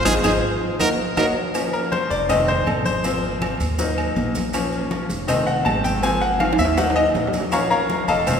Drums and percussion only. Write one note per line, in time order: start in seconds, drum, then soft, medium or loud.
0.05 cowbell loud
0.05 high conga loud
0.05 high timbale loud
0.05 claves loud
0.05 maracas loud
0.24 cowbell loud
0.24 high conga loud
0.24 high timbale loud
0.24 claves loud
0.24 maracas loud
0.80 cowbell loud
0.80 high conga loud
0.80 high timbale loud
0.80 claves medium
0.80 maracas loud
1.17 cowbell loud
1.17 high conga medium
1.17 high timbale loud
1.17 claves loud
1.17 maracas loud
1.55 cowbell loud
1.55 high conga soft
1.55 low agogo loud
1.55 claves medium
1.55 maracas medium
1.73 cowbell medium
1.73 high conga soft
1.73 maracas soft
1.92 cowbell medium
1.92 high conga loud
1.92 low agogo medium
1.92 maracas soft
2.11 high conga soft
2.11 maracas medium
2.29 cowbell loud
2.29 high conga soft
2.29 low conga medium
2.29 low agogo loud
2.29 claves medium
2.29 maracas medium
2.48 high conga soft
2.48 low conga medium
2.48 low agogo medium
2.48 maracas soft
2.67 cowbell medium
2.67 high conga medium
2.67 low agogo loud
2.67 claves medium
2.67 maracas soft
2.86 high conga medium
2.86 maracas medium
3.04 cowbell loud
3.04 high conga soft
3.04 low agogo medium
3.04 maracas medium
3.23 high conga soft
3.23 maracas soft
3.42 cowbell medium
3.42 high conga medium
3.42 low agogo loud
3.42 claves medium
3.42 maracas soft
3.60 cowbell medium
3.60 high conga soft
3.60 low agogo medium
3.60 maracas medium
3.79 cowbell loud
3.79 high conga soft
3.79 maracas medium
3.98 high conga soft
3.98 low agogo loud
3.98 claves medium
3.98 maracas soft
4.16 cowbell medium
4.16 high conga medium
4.16 maracas soft
4.35 cowbell medium
4.35 high conga medium
4.35 low agogo medium
4.35 maracas medium
4.53 cowbell loud
4.53 high conga soft
4.53 low agogo loud
4.53 claves medium
4.53 maracas medium
4.72 cowbell medium
4.72 high conga soft
4.72 maracas soft
4.91 cowbell medium
4.91 high conga medium
4.91 low agogo medium
4.91 maracas soft
5.10 high conga soft
5.10 maracas medium
5.28 cowbell loud
5.28 high conga soft
5.28 low conga medium
5.28 low agogo loud
5.28 claves medium
5.28 maracas medium
5.47 high conga soft
5.47 low agogo medium
5.47 maracas soft
5.66 cowbell medium
5.66 high conga medium
5.66 low timbale medium
5.66 low agogo loud
5.66 claves medium
5.66 maracas soft
5.84 high conga medium
5.84 maracas medium
6.03 cowbell loud
6.03 high conga soft
6.03 low agogo medium
6.03 maracas medium
6.22 high conga soft
6.22 maracas soft
6.40 cowbell medium
6.40 high conga medium
6.40 high timbale medium
6.40 low agogo loud
6.40 claves medium
6.40 maracas soft
6.53 high timbale loud
6.59 cowbell medium
6.59 high conga soft
6.59 low agogo medium
6.59 maracas medium
6.65 high timbale medium
6.77 cowbell loud
6.77 high conga soft
6.77 low timbale loud
6.77 maracas medium
6.90 high timbale medium
6.96 high conga soft
6.96 low agogo loud
6.96 claves medium
6.96 maracas soft
7.15 cowbell medium
7.15 high conga medium
7.15 low timbale medium
7.15 maracas soft
7.27 low timbale medium
7.33 cowbell medium
7.33 high conga medium
7.33 low agogo medium
7.33 maracas medium
7.40 low timbale medium
7.52 cowbell loud
7.52 high conga soft
7.52 low agogo loud
7.52 claves medium
7.52 maracas medium
7.71 cowbell medium
7.71 high conga soft
7.71 maracas soft
7.90 cowbell medium
7.90 high conga medium
7.90 low agogo medium
7.90 maracas soft
8.08 high conga soft
8.08 maracas medium
8.27 cowbell loud
8.27 high conga soft
8.27 low conga medium
8.27 low agogo loud
8.27 claves medium
8.27 maracas medium